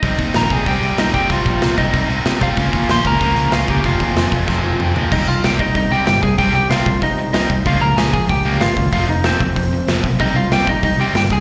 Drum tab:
CC |--------|--------|--------|--------|
HH |ooo-oooo|oooooooo|oooooooo|oooo----|
SD |--o---o-|--o---o-|--o---o-|--o-o---|
T1 |--------|--------|--------|-----o--|
T2 |--------|--------|--------|------o-|
FT |--------|--------|--------|-------o|
BD |oo-oo--o|oo-oo--o|oo-oo--o|oo-oo---|

CC |x-------|--------|--------|--------|
HH |--o-o-o-|o-o-o-o-|o-o-o-o-|o-o-o-o-|
SD |--o---o-|--o---o-|--o---o-|--o---o-|
T1 |--------|--------|--------|--------|
T2 |--------|--------|--------|--------|
FT |--------|--------|--------|--------|
BD |o--oo--o|o--oo--o|o--oo--o|o--oo--o|

CC |--------|
HH |o-o-o-o-|
SD |--o---o-|
T1 |--------|
T2 |--------|
FT |--------|
BD |o--oo--o|